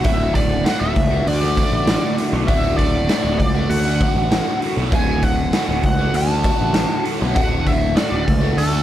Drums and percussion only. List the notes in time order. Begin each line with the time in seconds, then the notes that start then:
0.04 kick, open hi-hat
0.35 kick, open hi-hat
0.66 snare, open hi-hat
0.96 kick, open hi-hat
1.27 open hi-hat
1.57 kick, open hi-hat
1.87 snare, open hi-hat
2.18 open hi-hat
2.48 kick, open hi-hat
2.79 kick, open hi-hat
3.09 snare, open hi-hat
3.40 kick, open hi-hat
3.70 open hi-hat
4.01 kick, open hi-hat
4.32 snare, open hi-hat
4.62 open hi-hat
4.92 kick, open hi-hat
5.22 kick, open hi-hat
5.53 snare, open hi-hat
5.83 kick, open hi-hat
6.14 open hi-hat
6.44 kick, open hi-hat
6.74 snare, open hi-hat
7.05 open hi-hat
7.36 kick, open hi-hat
7.66 kick, open hi-hat
7.97 snare, open hi-hat
8.28 kick, open hi-hat
8.58 open hi-hat